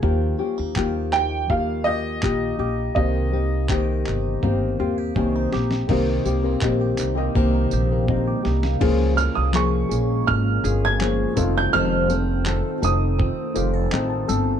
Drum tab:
CC |----------------|----------------|x---------------|x---------------|
TB |----------------|----------------|--x---x---x-----|--x---x---x---x-|
CP |----x-x-----x---|----x-x---------|----x-x---------|----x-------x---|
SD |----------------|--------------oo|--------------oo|----------------|
BD |o---o---o---o---|o---o---o---o---|o---o---o---o---|o-------o-----o-|

CC |----------------|
TB |--x---x---x---x-|
CP |----x-------x---|
SD |----------------|
BD |--------o-------|